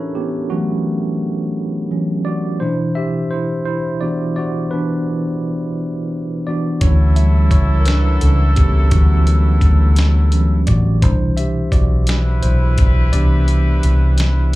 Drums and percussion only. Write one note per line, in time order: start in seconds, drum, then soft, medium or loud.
6.81 kick loud
6.81 closed hi-hat medium
7.16 closed hi-hat medium
7.51 kick medium
7.51 closed hi-hat medium
7.86 snare loud
7.86 closed hi-hat medium
8.21 closed hi-hat medium
8.56 kick medium
8.56 closed hi-hat medium
8.91 kick loud
8.91 closed hi-hat medium
9.27 closed hi-hat soft
9.61 kick medium
9.61 closed hi-hat medium
9.96 snare loud
9.96 closed hi-hat medium
10.32 closed hi-hat medium
10.67 kick medium
10.67 closed hi-hat medium
11.02 kick loud
11.02 closed hi-hat medium
11.37 closed hi-hat soft
11.72 kick medium
11.72 closed hi-hat medium
12.07 snare loud
12.07 closed hi-hat medium
12.43 closed hi-hat medium
12.78 kick medium
12.78 closed hi-hat medium
13.13 closed hi-hat medium
13.48 closed hi-hat medium
13.83 closed hi-hat medium
14.18 snare loud
14.18 closed hi-hat medium